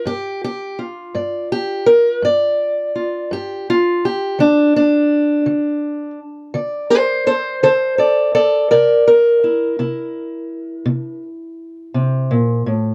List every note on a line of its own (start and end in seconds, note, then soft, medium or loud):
0.05 0.70 G2 medium
0.05 0.42 G4 loud
0.44 0.79 G4 medium
0.79 2.94 F4 soft
1.15 1.79 G2 medium
1.15 1.52 D5 soft
1.52 1.87 G4 medium
1.86 2.22 A#4 loud
2.22 2.86 G2 medium
2.22 3.31 D5 loud
2.95 3.66 F4 soft
3.31 3.95 G2 medium
3.31 3.67 G4 medium
3.70 4.03 F4 medium
4.05 4.39 G4 medium
4.39 5.03 D3 medium
4.39 4.75 D4 medium
4.76 6.19 D4 medium
5.46 6.10 D3 medium
6.54 7.18 D3 medium
6.54 7.98 D5 soft
6.90 6.96 A4 medium
6.90 7.26 C5 medium
7.27 7.32 A4 medium
7.27 7.62 C5 loud
7.63 8.27 D3 medium
7.63 7.68 A4 medium
7.63 7.98 C5 medium
7.98 8.33 A4 medium
7.98 8.33 D5 medium
8.35 8.70 A4 medium
8.35 8.70 D5 medium
8.71 9.36 C3 medium
8.71 9.06 A#4 medium
8.71 9.06 D5 medium
9.07 11.22 A#4 loud
9.44 9.78 E4 soft
9.79 10.43 C3 medium
9.79 12.95 E4 soft
10.86 11.50 C3 medium
11.94 12.30 C3 medium
12.31 12.66 A#2 medium
12.66 12.95 A2 medium